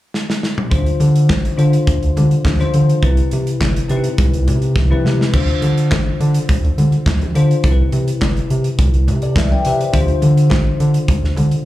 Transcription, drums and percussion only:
0.14 snare medium
0.30 snare medium
0.43 snare medium
0.58 mid tom medium
0.71 kick loud
0.71 closed hi-hat medium
0.71 muted conga soft
0.86 closed hi-hat soft
1.00 closed hi-hat medium
1.00 muted conga medium
1.16 closed hi-hat medium
1.29 kick medium
1.29 snare loud
1.29 clap medium
1.29 high conga medium
1.45 closed hi-hat soft
1.59 closed hi-hat soft
1.73 closed hi-hat medium
1.87 kick loud
1.87 closed hi-hat medium
1.87 muted conga soft
2.03 closed hi-hat soft
2.17 closed hi-hat medium
2.17 low conga medium
2.31 closed hi-hat soft
2.45 kick loud
2.45 snare loud
2.45 clap medium
2.45 high conga medium
2.60 closed hi-hat soft
2.60 high conga medium
2.74 closed hi-hat medium
2.74 high conga medium
2.89 closed hi-hat soft
3.02 kick loud
3.02 closed hi-hat medium
3.02 muted conga soft
3.17 closed hi-hat soft
3.31 closed hi-hat medium
3.31 muted conga medium
3.47 closed hi-hat medium
3.61 kick medium
3.61 snare loud
3.61 clap medium
3.61 high conga medium
3.76 closed hi-hat soft
3.89 closed hi-hat medium
4.04 closed hi-hat medium
4.18 kick loud
4.18 closed hi-hat medium
4.18 muted conga soft
4.18 low conga medium
4.33 closed hi-hat soft
4.48 closed hi-hat medium
4.48 low conga medium
4.62 closed hi-hat soft
4.76 kick loud
4.76 snare medium
4.76 high conga medium
4.93 high conga medium
5.06 snare medium
5.06 high conga soft
5.21 snare medium
5.33 kick loud
5.33 crash medium
5.33 muted conga medium
5.48 closed hi-hat soft
5.62 closed hi-hat medium
5.62 muted conga soft
5.78 closed hi-hat medium
5.91 kick loud
5.91 snare loud
5.91 clap medium
5.91 high conga medium
6.21 closed hi-hat medium
6.34 closed hi-hat medium
6.49 kick loud
6.49 closed hi-hat medium
6.49 muted conga soft
6.49 low conga medium
6.65 closed hi-hat soft
6.78 closed hi-hat medium
6.78 low conga medium
6.92 closed hi-hat soft
7.06 kick loud
7.06 snare loud
7.06 clap medium
7.06 high conga medium
7.21 closed hi-hat soft
7.21 high conga medium
7.35 closed hi-hat medium
7.35 high conga medium
7.51 closed hi-hat soft
7.64 kick loud
7.64 closed hi-hat medium
7.64 muted conga soft
7.92 closed hi-hat medium
7.92 muted conga medium
8.08 closed hi-hat medium
8.21 kick loud
8.21 snare loud
8.21 clap medium
8.21 high conga medium
8.37 closed hi-hat soft
8.50 closed hi-hat medium
8.64 closed hi-hat medium
8.79 kick loud
8.79 closed hi-hat medium
8.79 muted conga soft
8.79 low conga medium
8.94 closed hi-hat soft
9.08 closed hi-hat medium
9.08 low conga medium
9.22 closed hi-hat soft
9.36 kick loud
9.36 snare loud
9.36 clap medium
9.36 high conga medium
9.51 high conga medium
9.65 closed hi-hat medium
9.65 high conga soft
9.81 closed hi-hat soft
9.93 kick loud
9.93 closed hi-hat medium
9.93 muted conga medium
10.08 closed hi-hat soft
10.22 closed hi-hat medium
10.22 muted conga medium
10.37 closed hi-hat medium
10.50 kick medium
10.50 snare loud
10.50 clap medium
10.50 high conga medium
10.80 closed hi-hat medium
10.94 closed hi-hat medium
11.08 kick loud
11.08 closed hi-hat medium
11.08 muted conga soft
11.08 low conga medium
11.24 snare soft
11.36 closed hi-hat medium
11.36 low conga medium
11.51 closed hi-hat soft

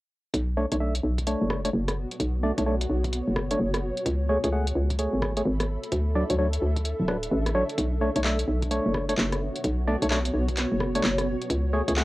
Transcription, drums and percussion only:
0.34 kick loud
0.34 closed hi-hat medium
0.72 kick loud
0.72 closed hi-hat medium
0.95 closed hi-hat medium
1.18 kick medium
1.18 closed hi-hat soft
1.27 closed hi-hat medium
1.50 kick medium
1.50 cross-stick medium
1.65 closed hi-hat medium
1.88 cross-stick medium
1.88 closed hi-hat soft
2.11 closed hi-hat soft
2.20 kick loud
2.20 closed hi-hat medium
2.58 kick loud
2.58 closed hi-hat medium
2.81 closed hi-hat medium
3.04 kick medium
3.04 closed hi-hat soft
3.13 closed hi-hat medium
3.36 kick medium
3.36 cross-stick medium
3.51 closed hi-hat medium
3.74 cross-stick medium
3.74 closed hi-hat soft
3.97 closed hi-hat soft
4.06 kick loud
4.06 closed hi-hat medium
4.44 kick loud
4.44 closed hi-hat medium
4.67 closed hi-hat medium
4.90 kick medium
4.90 closed hi-hat soft
4.99 closed hi-hat medium
5.22 kick loud
5.22 cross-stick medium
5.37 closed hi-hat medium
5.60 cross-stick medium
5.60 closed hi-hat soft
5.83 closed hi-hat soft
5.92 kick loud
5.92 closed hi-hat medium
6.30 kick loud
6.30 closed hi-hat medium
6.53 closed hi-hat medium
6.76 kick medium
6.76 closed hi-hat soft
6.85 closed hi-hat medium
7.08 kick medium
7.08 cross-stick medium
7.23 closed hi-hat medium
7.46 cross-stick medium
7.46 closed hi-hat soft
7.69 closed hi-hat soft
7.78 kick loud
7.78 closed hi-hat medium
8.16 kick loud
8.16 closed hi-hat medium
8.24 clap loud
8.39 closed hi-hat medium
8.62 kick medium
8.62 closed hi-hat soft
8.71 closed hi-hat medium
8.94 kick medium
8.94 cross-stick medium
9.09 closed hi-hat medium
9.18 clap loud
9.32 cross-stick medium
9.32 closed hi-hat soft
9.56 closed hi-hat soft
9.64 kick loud
9.64 closed hi-hat medium
10.02 kick loud
10.02 closed hi-hat medium
10.10 clap loud
10.25 closed hi-hat medium
10.49 kick medium
10.49 closed hi-hat soft
10.57 clap medium
10.57 closed hi-hat medium
10.80 kick medium
10.80 cross-stick medium
10.95 closed hi-hat medium
11.04 clap loud
11.18 cross-stick medium
11.18 closed hi-hat soft
11.42 closed hi-hat soft
11.50 kick loud
11.50 closed hi-hat medium
11.88 kick loud
11.88 closed hi-hat medium
11.97 clap loud

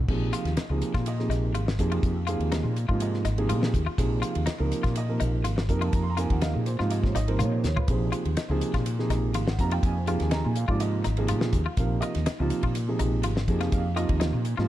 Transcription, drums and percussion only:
0.08 kick loud
0.08 crash medium
0.33 hi-hat pedal medium
0.33 ride medium
0.45 snare soft
0.45 ride medium
0.57 snare loud
0.57 hi-hat pedal medium
0.57 ride medium
0.82 hi-hat pedal medium
0.82 ride medium
0.94 kick medium
0.94 snare soft
0.94 ride medium
1.06 hi-hat pedal medium
1.06 ride medium
1.19 snare soft
1.31 snare soft
1.31 hi-hat pedal medium
1.31 ride medium
1.55 hi-hat pedal medium
1.55 ride medium
1.68 snare loud
1.79 kick medium
1.79 hi-hat pedal medium
1.79 ride medium
1.92 ride medium
2.03 kick loud
2.03 hi-hat pedal medium
2.03 ride medium
2.27 hi-hat pedal medium
2.27 ride medium
2.40 ride medium
2.52 snare loud
2.52 hi-hat pedal medium
2.52 ride medium
2.76 hi-hat pedal medium
2.76 ride medium
2.89 kick medium
3.00 hi-hat pedal medium
3.00 ride medium
3.14 snare soft
3.25 snare soft
3.25 hi-hat pedal medium
3.25 ride medium
3.38 ride medium
3.49 hi-hat pedal medium
3.49 ride medium
3.63 snare medium
3.74 kick medium
3.74 hi-hat pedal medium
3.74 ride medium
3.98 kick medium
3.98 hi-hat pedal medium
3.98 ride medium
4.23 hi-hat pedal medium
4.23 ride medium
4.35 ride medium
4.46 snare loud
4.46 hi-hat pedal medium
4.46 ride medium
4.72 hi-hat pedal medium
4.72 ride medium
4.84 kick medium
4.84 snare soft
4.84 ride medium
4.96 hi-hat pedal medium
4.96 ride medium
5.20 hi-hat pedal medium
5.20 ride medium
5.45 hi-hat pedal medium
5.45 ride medium
5.58 snare loud
5.69 kick medium
5.69 hi-hat pedal medium
5.69 ride medium
5.82 ride medium
5.93 kick loud
5.93 hi-hat pedal medium
5.93 ride medium
6.17 hi-hat pedal medium
6.17 ride medium
6.30 kick medium
6.30 ride medium
6.41 snare loud
6.41 hi-hat pedal medium
6.41 ride medium
6.66 hi-hat pedal medium
6.66 ride medium
6.80 snare soft
6.90 hi-hat pedal medium
6.90 ride medium
7.04 kick medium
7.04 snare soft
7.15 snare soft
7.15 hi-hat pedal medium
7.15 ride medium
7.28 ride medium
7.39 hi-hat pedal medium
7.39 high tom medium
7.64 snare medium
7.64 hi-hat pedal medium
7.77 floor tom medium
7.88 kick loud
7.88 hi-hat pedal medium
7.88 ride medium
8.12 hi-hat pedal medium
8.12 ride medium
8.25 ride medium
8.37 snare loud
8.37 hi-hat pedal medium
8.37 ride medium
8.61 hi-hat pedal medium
8.61 ride medium
8.74 kick medium
8.74 snare soft
8.74 ride medium
8.86 hi-hat pedal medium
8.86 ride medium
8.99 snare soft
9.10 snare soft
9.10 hi-hat pedal medium
9.10 ride medium
9.34 hi-hat pedal medium
9.34 ride medium
9.48 snare loud
9.59 kick medium
9.59 hi-hat pedal medium
9.59 ride medium
9.71 ride medium
9.83 kick loud
9.83 hi-hat pedal medium
9.83 ride medium
10.07 hi-hat pedal medium
10.07 ride medium
10.20 snare soft
10.20 ride medium
10.31 snare loud
10.31 hi-hat pedal medium
10.31 ride medium
10.55 hi-hat pedal medium
10.55 ride medium
10.69 kick medium
10.80 hi-hat pedal medium
10.80 ride medium
11.04 snare soft
11.04 hi-hat pedal medium
11.04 ride medium
11.17 ride medium
11.28 hi-hat pedal medium
11.28 ride medium
11.41 snare loud
11.53 kick medium
11.53 hi-hat pedal medium
11.53 ride medium
11.77 kick loud
11.77 hi-hat pedal medium
11.77 ride medium
12.02 hi-hat pedal medium
12.02 ride medium
12.15 snare soft
12.15 ride medium
12.26 snare loud
12.26 hi-hat pedal medium
12.26 ride medium
12.50 hi-hat pedal medium
12.50 ride medium
12.63 kick medium
12.63 ride medium
12.75 hi-hat pedal medium
12.75 ride medium
12.99 hi-hat pedal medium
12.99 ride medium
13.23 hi-hat pedal medium
13.23 ride medium
13.37 snare loud
13.48 kick medium
13.48 hi-hat pedal medium
13.48 ride medium
13.61 snare soft
13.61 ride medium
13.72 kick loud
13.72 hi-hat pedal medium
13.72 ride medium
13.97 hi-hat pedal medium
13.97 ride medium
14.09 kick medium
14.09 ride medium
14.21 snare loud
14.21 hi-hat pedal medium
14.21 ride medium
14.45 hi-hat pedal medium
14.45 ride medium
14.59 snare soft

